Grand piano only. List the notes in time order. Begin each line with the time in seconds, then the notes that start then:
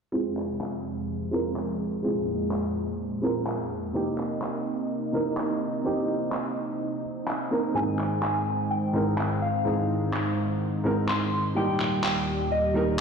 0.12 G#3 C4 F4 G#4
1.31 G#3 C4 F4 A#4
2.03 G#3 C4 F4 G#4
3.22 G#3 C4 F4 A#4
3.93 C3 A#3 C4 D#4 G4
5.12 C3 A#3 C4 D#4 A#4
5.84 C3 A#3 C4 D#4 G4
7.51 A#3 C4 D#4 A#4
7.74 G#2 G#3 C4 D#4 G#4
8.93 G#2 G#3 C4 D#4 A#4
9.65 G#2 G#3 C4 D#4 G#4
10.84 G#2 G#3 C4 D#4 A#4
11.55 G3 A#3 D#4 G4
12.74 G3 A#3 D#4 A#4